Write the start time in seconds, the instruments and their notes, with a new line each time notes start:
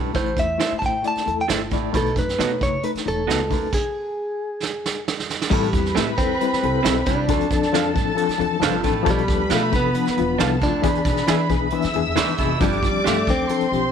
Already playing: upright bass B1, baritone saxophone A2
0.14 upright bass A1, baritone saxophone A2, reed electric piano A3 E4 C5, clean electric guitar C5, kick, closed hi-hat
0.26 closed hi-hat
0.36 upright bass E2, reed electric piano A3 E4 C5, clean electric guitar E5, kick, closed hi-hat
0.58 reed electric piano A3 E4 C5, clean electric guitar E4 A4 C5 E5, snare, closed hi-hat
0.72 muted upright bass stroke
0.79 upright bass A2, reed electric piano A3 E4 C5, clean electric guitar A5, kick, closed hi-hat
0.86 clean electric guitar G5
1.02 reed electric piano A3 E4 D5, closed hi-hat
1.08 clean electric guitar A5
1.15 muted upright bass stroke, snare, closed hi-hat
1.26 upright bass E2, reed electric piano A3 E4 A4, closed hi-hat
1.41 clean electric guitar G5
1.48 upright bass G1, reed electric piano A3 E4 C5, clean electric guitar E4 A4 C5 E5, snare, closed hi-hat
1.71 upright bass A1, baritone saxophone A2, reed electric piano A3 E4 D5, kick, closed hi-hat
1.93 upright bass B1, baritone saxophone B2, reed electric piano A3 D#4 B4, clean electric guitar A4, kick, closed hi-hat
2.06 closed hi-hat
2.15 upright bass F#2, reed electric piano A3 D#4 B4, clean electric guitar B4, kick, closed hi-hat
2.29 snare
2.38 upright bass B2, reed electric piano A3 D#4 C#5, clean electric guitar B3 F#4 A4 D#5, snare, closed hi-hat
2.59 upright bass F#1, reed electric piano A3 D#4 B4, clean electric guitar C#5, kick, closed hi-hat
2.83 reed electric piano A3 D#4 B4, clean electric guitar B4, closed hi-hat
2.95 muted upright bass stroke, snare, closed hi-hat
3.05 upright bass E1, reed electric piano A3 D#4 C#5, clean electric guitar A4, closed hi-hat
3.27 upright bass C#2, reed electric piano A3 D#4 B4, clean electric guitar B3 F#4 A4 D#5, snare, closed hi-hat
3.50 upright bass D#2, baritone saxophone F#2, reed electric piano A3 D#4 B4, kick, open hi-hat
3.73 clean electric guitar G#4, kick, crash
4.63 snare
4.86 snare
5.08 snare
5.20 snare
5.30 snare
5.42 snare
5.50 upright bass A1, baritone saxophone A2, reed electric piano G3 C4 E4 A4, clean electric guitar G3, violin section B4 B5, kick, crash
5.64 closed hi-hat
5.72 upright bass E2, reed electric piano G3 C4 E4 B4, kick, closed hi-hat
5.86 snare
5.95 upright bass A2, reed electric piano G3 C4 E4 B4, clean electric guitar A3 C4 G4 A4 E5, snare, closed hi-hat
6.18 upright bass E2, reed electric piano G3 C4 E4 A4, clean electric guitar C4, kick, closed hi-hat
6.41 reed electric piano G3 C4 E4 B4, closed hi-hat
6.52 muted upright bass stroke, snare
6.63 upright bass C2, reed electric piano G3 C4 E4 A4, closed hi-hat
6.83 upright bass B1, reed electric piano G3 C4 E4 A4, clean electric guitar C4 G4 A4 E5, snare, closed hi-hat
7.06 upright bass C2, baritone saxophone G2, reed electric piano G3 C4 E4, clean electric guitar D4, kick, closed hi-hat
7.10 reed electric piano C5
7.28 upright bass D2, baritone saxophone D2, reed electric piano F3 C4 D4 A4, violin section A4 A5, kick, closed hi-hat
7.40 closed hi-hat
7.50 upright bass F2, reed electric piano F3 C4 D4 A4, kick, closed hi-hat
7.63 snare
7.72 reed electric piano F3 C4 D4 A4, clean electric guitar D4 A4 C5 F5, snare, closed hi-hat
7.93 upright bass A2, reed electric piano F3 C4 D4 A4, kick, closed hi-hat
8.15 reed electric piano F3 C4 D4 A4, closed hi-hat
8.28 muted upright bass stroke, snare, closed hi-hat
8.38 upright bass E2, reed electric piano F3 C4 D4 A4, closed hi-hat
8.60 upright bass G1, baritone saxophone F2, reed electric piano F3 C4 D4 B4, clean electric guitar D4 A4 C5, snare, closed hi-hat
8.64 clean electric guitar F5
8.82 upright bass A1, baritone saxophone A2, reed electric piano F3 C4 D4 A4, kick, closed hi-hat
9.03 upright bass B1, baritone saxophone B2, reed electric piano F3 B3 D4 A4, violin section B4 B5, kick, closed hi-hat
9.10 clean electric guitar G3
9.18 closed hi-hat
9.26 upright bass D2, reed electric piano F3 B3 D4 A4, kick, closed hi-hat
9.48 upright bass B2, reed electric piano F3 B3 D4 F4, clean electric guitar D4 A4 B4 F5, snare, closed hi-hat
9.54 clean electric guitar A3
9.71 upright bass F1, reed electric piano F3 B3 D4 A4, kick, closed hi-hat
9.76 clean electric guitar B3
9.94 reed electric piano F3 B3 D4 B4, closed hi-hat
10.05 muted upright bass stroke, snare, closed hi-hat
10.17 upright bass E1, reed electric piano F3 B3 D4 F4, closed hi-hat
10.38 upright bass C2, reed electric piano F3 B3 D4 E4, clean electric guitar D4 A4 B4 F5, violin section A4 A5, snare, closed hi-hat
10.61 upright bass D2, baritone saxophone A2, reed electric piano F3 B3 D4 F4, clean electric guitar D4, kick, closed hi-hat
10.82 baritone saxophone E2, upright bass E2, reed electric piano E3 B3 D4 G#4, violin section B4 B5, kick, closed hi-hat
10.95 closed hi-hat
11.05 upright bass B2, reed electric piano E3 B3 D4 G#4, kick, closed hi-hat
11.17 snare
11.26 reed electric piano E3 B3 D4 G#4, upright bass E3, clean electric guitar D4 G#4 B4 E5, snare, closed hi-hat
11.49 upright bass B1, reed electric piano E3 B3 D4 G#4, kick, closed hi-hat
11.70 reed electric piano E3 B3 D4 B4, violin section E5 E6, closed hi-hat
11.82 upright bass E3, snare, closed hi-hat
11.93 upright bass E2, reed electric piano E3 B3 D4 G#4, closed hi-hat
12.06 upright bass E2
12.15 upright bass D2, baritone saxophone G#2, reed electric piano E3 B3 D4 B4, clean electric guitar D4 G#4 B4 E5, snare, closed hi-hat
12.37 upright bass F1, baritone saxophone B2, reed electric piano E3 B3 D4 G#4, kick, closed hi-hat
12.60 upright bass G1, baritone saxophone G2, reed electric piano F3 C4 D4 G4, clean electric guitar G3, violin section D5 D6, kick, closed hi-hat
12.72 closed hi-hat
12.83 upright bass D2, reed electric piano F3 C4 D4 G4, kick, closed hi-hat
13.04 upright bass G2, reed electric piano F3 C4 D4 G4, clean electric guitar A3 D4 G4 C5 F5, snare, closed hi-hat
13.27 upright bass D2, reed electric piano F3 C4 D4 A4, clean electric guitar C4, kick, closed hi-hat
13.49 reed electric piano F3 C4 D4 A4, violin section C5 C6, closed hi-hat
13.61 muted upright bass stroke, closed hi-hat
13.71 upright bass B1, reed electric piano F3 C4 D4 G4, closed hi-hat